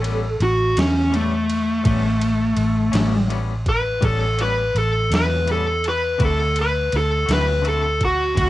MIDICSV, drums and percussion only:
0, 0, Header, 1, 2, 480
1, 0, Start_track
1, 0, Tempo, 724638
1, 1223, Time_signature, 12, 3, 24, 8
1, 5628, End_track
2, 0, Start_track
2, 0, Title_t, "Drums"
2, 29, Note_on_c, 9, 51, 54
2, 95, Note_off_c, 9, 51, 0
2, 268, Note_on_c, 9, 51, 50
2, 335, Note_off_c, 9, 51, 0
2, 510, Note_on_c, 9, 51, 78
2, 524, Note_on_c, 9, 38, 99
2, 576, Note_off_c, 9, 51, 0
2, 590, Note_off_c, 9, 38, 0
2, 754, Note_on_c, 9, 51, 54
2, 820, Note_off_c, 9, 51, 0
2, 991, Note_on_c, 9, 51, 55
2, 1057, Note_off_c, 9, 51, 0
2, 1226, Note_on_c, 9, 51, 76
2, 1227, Note_on_c, 9, 36, 104
2, 1292, Note_off_c, 9, 51, 0
2, 1293, Note_off_c, 9, 36, 0
2, 1467, Note_on_c, 9, 51, 63
2, 1533, Note_off_c, 9, 51, 0
2, 1700, Note_on_c, 9, 51, 60
2, 1766, Note_off_c, 9, 51, 0
2, 1941, Note_on_c, 9, 51, 87
2, 1955, Note_on_c, 9, 38, 102
2, 2008, Note_off_c, 9, 51, 0
2, 2022, Note_off_c, 9, 38, 0
2, 2188, Note_on_c, 9, 51, 50
2, 2254, Note_off_c, 9, 51, 0
2, 2425, Note_on_c, 9, 36, 64
2, 2425, Note_on_c, 9, 51, 47
2, 2491, Note_off_c, 9, 36, 0
2, 2491, Note_off_c, 9, 51, 0
2, 2665, Note_on_c, 9, 36, 96
2, 2665, Note_on_c, 9, 51, 72
2, 2731, Note_off_c, 9, 36, 0
2, 2731, Note_off_c, 9, 51, 0
2, 2906, Note_on_c, 9, 51, 56
2, 2972, Note_off_c, 9, 51, 0
2, 3151, Note_on_c, 9, 51, 54
2, 3218, Note_off_c, 9, 51, 0
2, 3389, Note_on_c, 9, 51, 78
2, 3403, Note_on_c, 9, 38, 101
2, 3456, Note_off_c, 9, 51, 0
2, 3470, Note_off_c, 9, 38, 0
2, 3627, Note_on_c, 9, 51, 52
2, 3693, Note_off_c, 9, 51, 0
2, 3869, Note_on_c, 9, 51, 48
2, 3935, Note_off_c, 9, 51, 0
2, 4106, Note_on_c, 9, 36, 93
2, 4106, Note_on_c, 9, 51, 70
2, 4172, Note_off_c, 9, 36, 0
2, 4172, Note_off_c, 9, 51, 0
2, 4344, Note_on_c, 9, 51, 61
2, 4410, Note_off_c, 9, 51, 0
2, 4586, Note_on_c, 9, 51, 58
2, 4652, Note_off_c, 9, 51, 0
2, 4827, Note_on_c, 9, 51, 78
2, 4841, Note_on_c, 9, 38, 97
2, 4893, Note_off_c, 9, 51, 0
2, 4907, Note_off_c, 9, 38, 0
2, 5066, Note_on_c, 9, 51, 53
2, 5132, Note_off_c, 9, 51, 0
2, 5304, Note_on_c, 9, 51, 49
2, 5305, Note_on_c, 9, 36, 56
2, 5370, Note_off_c, 9, 51, 0
2, 5371, Note_off_c, 9, 36, 0
2, 5545, Note_on_c, 9, 36, 92
2, 5547, Note_on_c, 9, 51, 82
2, 5611, Note_off_c, 9, 36, 0
2, 5613, Note_off_c, 9, 51, 0
2, 5628, End_track
0, 0, End_of_file